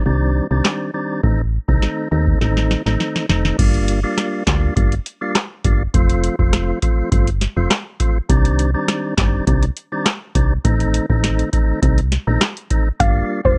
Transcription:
0.06 C2 D#3 G3 C4 D4
0.51 C2 D#3 G3 C4 D4
0.65 snare, clap
0.94 D#3 G3 C4 D4
1.23 A1 D#3 A3 C4 D#4, kick
1.68 C2 D#3 A3 C4 D#4, kick
1.82 snare
2.11 D#2 D#3 A3 C4 D#4
2.27 kick
2.41 A1 D#3 A3 C4 D#4, snare
2.57 snare
2.71 snare
2.86 A1 D#3 A3 C4 D#4, snare
3.00 snare
3.16 snare
3.29 F1 D#3 A3 C4 D#4, snare
3.45 snare
3.58 G1 G3 A#3 D4 F4, kick, closed hi-hat, crash
3.74 closed hi-hat
3.88 closed hi-hat
4.03 G3 A#3 D4 F4
4.18 cross-stick, snare, closed hi-hat
4.47 D2 G3 A#3 D4 F4, kick, snare, clap, closed hi-hat
4.76 G1 G3 A#3 D4 F4, kick, closed hi-hat
4.92 closed hi-hat
5.06 closed hi-hat
5.21 G3 A#3 D4 F4
5.35 cross-stick, snare, clap, closed hi-hat
5.64 G1 G3 A#3 D4 F4, kick, closed hi-hat
5.94 F1 F3 A3 C4 F4, kick, closed hi-hat
6.10 closed hi-hat
6.24 closed hi-hat
6.39 F1 F3 A3 C4 F4, kick
6.53 cross-stick, snare, closed hi-hat
6.82 F3 A3 C4 F4, kick, closed hi-hat
7.12 G1 F3 A3 C4 F4, kick, closed hi-hat
7.27 closed hi-hat
7.41 snare, closed hi-hat
7.57 F1 F3 A3 C4 F4
7.71 cross-stick, snare, clap, closed hi-hat
8.00 F3 A3 C4 F4, kick, closed hi-hat
8.29 C2 D#3 G3 C4 D4, kick, closed hi-hat
8.45 closed hi-hat
8.59 closed hi-hat
8.74 D#3 G3 C4 D4
8.88 cross-stick, snare, closed hi-hat
9.17 G1 D#3 G3 C4 D4, kick, snare, clap, closed hi-hat
9.47 C2 D#3 G3 C4 D4, kick, closed hi-hat
9.63 closed hi-hat
9.77 closed hi-hat
9.92 D#3 G3 C4 D4
10.06 cross-stick, snare, clap, closed hi-hat
10.35 C2 D#3 G3 C4 D4, kick, closed hi-hat
10.64 A1 D#3 A3 C4 D#4, kick, closed hi-hat
10.80 closed hi-hat
10.94 closed hi-hat
11.10 A1 D#3 A3 C4 D#4, kick
11.24 snare, closed hi-hat
11.39 closed hi-hat
11.53 D#3 A3 C4 D#4, kick, closed hi-hat
11.82 C2 D#3 A3 C4 D#4, kick, closed hi-hat
11.98 closed hi-hat
12.12 snare, closed hi-hat
12.27 A#1 D#3 A3 C4 D#4
12.41 cross-stick, snare, clap, closed hi-hat
12.57 closed hi-hat
12.70 D#3 A3 C4 D#4, kick, closed hi-hat
13.00 G1 G3 A#3 D4 F4 F5, kick, closed hi-hat
13.45 F1 G3 A#3 D4 F4 C5, kick

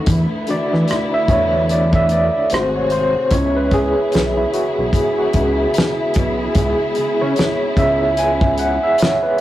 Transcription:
Already playing: B3
0.06 E2 D3 A3 E4, kick, closed hi-hat
0.47 E3 A3 D4 F#4 D5, closed hi-hat
0.73 E3, cross-stick
0.88 cross-stick, closed hi-hat
1.14 E5
1.28 E2 C#5, kick, closed hi-hat
1.69 D5, closed hi-hat
1.93 E5, kick
2.09 D5, closed hi-hat
2.50 G#1 C3 A3 C4 F#4 G#4 C5, closed hi-hat
2.54 cross-stick
2.76 C#5
2.90 C5, closed hi-hat
3.31 C#2 C#3 G#3 B3 E4 C#5, kick, closed hi-hat
3.56 B4
3.71 G#4, kick, closed hi-hat
4.12 B1, snare, closed hi-hat
4.37 E4
4.54 F#4, closed hi-hat
4.79 B1
4.93 G#3 B3 E4 G#4, kick, closed hi-hat
5.18 F#4
5.33 C#2, kick, closed hi-hat
5.74 closed hi-hat
5.78 snare
6.14 B1, kick, closed hi-hat
6.55 C#2 G#3 B3 E4 G#4, kick, closed hi-hat
6.95 C#3, closed hi-hat
7.21 C#3 C#5
7.36 snare, closed hi-hat
7.77 C#2 G#3 B3 E4 E5, kick, closed hi-hat
8.17 G#5, closed hi-hat
8.41 kick
8.58 F#5, closed hi-hat
8.83 E5
8.98 C#5, closed hi-hat
9.02 snare
9.23 B4

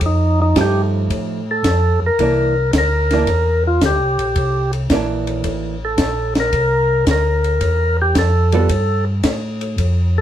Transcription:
0.01 F2, kick, ride
0.06 D#4
0.42 D#4
0.55 G2 F3 A3 D#4 G4, kick, snare, hi-hat pedal, ride
0.61 G4
1.10 A2, kick, ride
1.51 A4
1.64 F2, kick, snare, hi-hat pedal, ride
2.02 F2
2.06 A#4
2.19 C2 E3 A#3 D4, kick, ride
2.73 D2, kick, snare, hi-hat pedal, ride
2.78 A#4
3.11 E3 A#3 D4, snare, ride
3.27 E2, kick, ride
3.67 F4
3.81 D2, kick, snare, hi-hat pedal, ride
3.86 G4
4.00 C2
4.18 A#1, ride
4.35 C2, kick, ride
4.73 ride
4.90 A#1 E3 A#3 D4, kick, snare, hi-hat pedal, ride
5.27 ride
5.44 A1, kick, ride
5.85 A4
5.98 A#1, kick, snare, hi-hat pedal, ride
6.35 snare, ride
6.40 A#4
6.52 C2, kick, ride
7.06 D2, kick, snare, hi-hat pedal, ride
7.11 A#4
7.44 ride
7.61 E2, kick, ride
8.02 G4
8.15 F2 A4, kick, snare, hi-hat pedal, ride
8.52 G3 B3 F4 A4, ride
8.69 G2, kick, ride
9.23 A2, kick, snare, hi-hat pedal, ride
9.61 ride
9.78 F2, kick, ride
10.18 A4

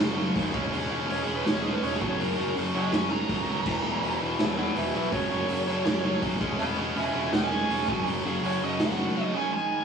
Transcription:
0.00 F#1 F#2 C#3 F#3
0.17 F#2 C#3 F#3
0.35 D#2 F#2 C#3 F#3, kick, open hi-hat
0.53 E1 C#3 G#3 C#4, kick
0.72 E1 C#3 G#3 C#4, open hi-hat
0.90 E1 C#3 G#3 C#4
1.08 E1 C#3 G#3 C#4 C#5, open hi-hat
1.22 G#4
1.27 E1 C#3 G#3 C#4
1.35 B4
1.45 E1 C#3 G#3 C#4 C#5, snare, open hi-hat
1.60 C#3 G#3 G#4
1.65 C#4
1.73 B4
1.82 E1 C#3 G#3 C#4 C#5, open hi-hat
1.96 F#2 G#4
2.00 F#1 C#3 F#3, kick
2.09 C#5
2.18 F#1 F#2 C#3 F#3 A#4, open hi-hat
2.37 F#1 F#2 C#3 F#3
2.56 F#1 F#2 C#3 F#3, open hi-hat
2.74 F#1 F#2 C#3 F#3 D#5 G#5
2.92 F#1 F#2 C#3 F#3 G#5 C#6, snare, open hi-hat
3.11 F#2 C#3 F#3 A#5
3.29 F#1 F#2 C#3 F#3, kick, open hi-hat
3.47 C#2 F#2 C#3 F#3
3.66 E1 E2 B2 E3, kick, crash
3.84 E1 E2 B2 E3
4.02 E1 E2 B2 E3, open hi-hat
4.21 E1 E2 B2 E3
4.39 E1 E2 B2 E3 C#5 F#5, snare, open hi-hat
4.58 E2 B2 E3 C#5 F#5
4.76 E1 E2 B2 E3 B4 E5, open hi-hat
4.94 B1 E2 B2 E3 B4 E5
5.11 F#1 F#2 C#3 F#3 C#5, kick, open hi-hat
5.31 F#1 F#2 C#3 F#3
5.48 F#1 F#2 C#3 F#3, open hi-hat
5.67 F#1 F#2 C#3 F#3
5.85 F#1 F#2 C#3 F#3, snare, open hi-hat
6.04 F#2 C#3 F#3
6.22 F#1 F#2 C#3 F#3, kick, open hi-hat
6.40 E1 C#3 G#3 C#4, kick
6.58 E1 C#3 G#3 C#4 F#5 B5, open hi-hat
6.77 E1 C#3 G#3 C#4 F#5 B5
6.95 E1 C#3 G#3 C#4 E5 G#5, open hi-hat
7.13 E1 C#3 G#3 C#4 E5 G#5
7.32 E1 C#3 G#3 C#4 G#5, snare, open hi-hat
7.51 C#3 G#3 C#4
7.69 E1 C#3 G#3 C#4, open hi-hat
7.87 F#1 F#2 C#3 F#3, kick
8.06 F#1 F#2 C#3 F#3, open hi-hat
8.24 F#1 F#2 C#3 F#3 G#4
8.43 F#1 F#2 C#3 F#3 C#5, open hi-hat
8.62 F#1 F#2 C#3 F#3 D#5
8.79 F#1 F#2 C#3 F#3 F#5, snare, open hi-hat
8.98 F#2 C#3 F#3
9.16 F#2 C#3 F#3
9.23 D#5
9.35 F#2 C#3 F#3 G#5
9.52 G#2 D#3 G#3 G#5
9.71 G#2 D#3 G#3

